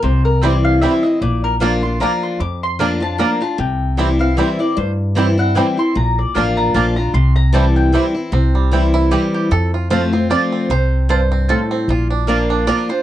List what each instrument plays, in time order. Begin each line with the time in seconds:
0.03 upright bass C2, steel-string acoustic guitar C3, mandolin C5
0.25 mandolin A#4
0.41 steel-string acoustic guitar E3 G3 C4 E4, five-string banjo G3 C4 E4, mandolin C4 E4 C5 D5 G5
0.65 mandolin F5
0.81 steel-string acoustic guitar E3 G3 C4 E4, five-string banjo G3 C4 E4, mandolin C4 E4 C5 E5 G5
1.03 steel-string acoustic guitar C4 E4, mandolin D#5
1.21 upright bass A#1, steel-string acoustic guitar A#2, mandolin D5
1.44 mandolin A#4
1.60 steel-string acoustic guitar F3 A#3 D4 F4, mandolin A#3 F4 D5 A#5, five-string banjo A#3 D4
1.83 steel-string acoustic guitar D4 F4, mandolin C6
2.00 steel-string acoustic guitar F3 A#3 D4 F4, mandolin A#3 F4 D5 A#5, five-string banjo A#3 D4
2.23 mandolin C6
2.40 upright bass F2, steel-string acoustic guitar F2, mandolin D6
2.63 mandolin C6
2.79 steel-string acoustic guitar F3 A#3 D4 F4, mandolin A#3 F4 D5 A#5, five-string banjo A#3 D4
3.00 steel-string acoustic guitar D4 F4, mandolin A5
3.18 steel-string acoustic guitar F3 A#3 D4 F4, mandolin A#3 F4 D5 A#5, five-string banjo A#3 D4
3.41 steel-string acoustic guitar D4 F4, mandolin A5
3.58 upright bass C2, steel-string acoustic guitar C3, mandolin G5
3.97 steel-string acoustic guitar E3 G3 C4 E4, five-string banjo G3 C4 E4, mandolin C4 E4 C5 G5
4.19 steel-string acoustic guitar C4 E4, mandolin F5
4.37 steel-string acoustic guitar E3 G3 C4 E4, five-string banjo G3 C4 E4, mandolin C4 E4 C5 E5 G5
4.59 steel-string acoustic guitar C4 E4, mandolin D5
4.77 steel-string acoustic guitar G2, upright bass G2, mandolin C5
5.15 steel-string acoustic guitar E3 G3 C4 E4, five-string banjo G3 C4 E4, mandolin C4 E4 C5 G5
5.37 steel-string acoustic guitar C4 E4, mandolin F#5
5.55 steel-string acoustic guitar E3 G3 C4 E4, five-string banjo G3 C4 E4, mandolin C4 E4 C5 G5
5.77 steel-string acoustic guitar C4 E4, mandolin C6
5.95 upright bass A#1, steel-string acoustic guitar A#2, mandolin A#5
6.19 mandolin D5
6.34 upright bass A1, steel-string acoustic guitar F3 A#3 D4 F4, mandolin A#3 F4 D5 F5 A#5, five-string banjo A#3 D4
6.57 mandolin A#5
6.74 upright bass A#1, steel-string acoustic guitar F3 A#3 D4 F4, mandolin A#3 F4 D5 A5 A#5, five-string banjo A#3 D4
6.96 steel-string acoustic guitar D4 F4, mandolin A#5
7.14 upright bass C2, steel-string acoustic guitar C3, mandolin C6
7.36 mandolin A#5
7.53 steel-string acoustic guitar E3 G3 C4 E4, five-string banjo G3 C4 E4, mandolin C4 E4 C5 G5 A5
7.76 mandolin G5
7.92 steel-string acoustic guitar E3 G3 C4 E4, five-string banjo G3 C4 E4, mandolin C4 E4 C5 G5
8.14 steel-string acoustic guitar C4 E4
8.32 upright bass C2, steel-string acoustic guitar C3, five-string banjo C4
8.55 five-string banjo G3
8.71 steel-string acoustic guitar E3 G3 C4 E4, mandolin C4 E4 C5 G5, five-string banjo E4
8.94 five-string banjo E4
9.11 steel-string acoustic guitar E3 G3 C4 E4, mandolin C4 E4 C5 G5, five-string banjo G4
9.34 five-string banjo G4
9.51 steel-string acoustic guitar F2, upright bass F2, five-string banjo A4
9.74 five-string banjo F4
9.90 steel-string acoustic guitar F3 A3 C4 F4, mandolin C4 F4 C5 A5, five-string banjo C5
10.13 five-string banjo C4, steel-string acoustic guitar C4 F4
10.30 steel-string acoustic guitar F3 A3 C4 F4, mandolin C4 F4 C5 A5, five-string banjo D5
10.52 five-string banjo C4
10.70 upright bass C2, steel-string acoustic guitar C3, five-string banjo C5
11.09 steel-string acoustic guitar G2, mandolin C4 F4 C5 A5, five-string banjo C5
11.32 five-string banjo C4
11.49 steel-string acoustic guitar A2, mandolin C4 F4 C5 A5, five-string banjo A4
11.71 five-string banjo C4
11.88 upright bass A#1, steel-string acoustic guitar A#2, five-string banjo F4
12.10 five-string banjo D4
12.27 steel-string acoustic guitar F3 A#3 D4 F4, mandolin A#3 F4 D5 A#5, five-string banjo A#3
12.50 five-string banjo D4
12.67 steel-string acoustic guitar F3 A#3 D4 F4, mandolin A#3 F4 D5 A#5, five-string banjo D5
12.89 steel-string acoustic guitar D4 F4, five-string banjo C5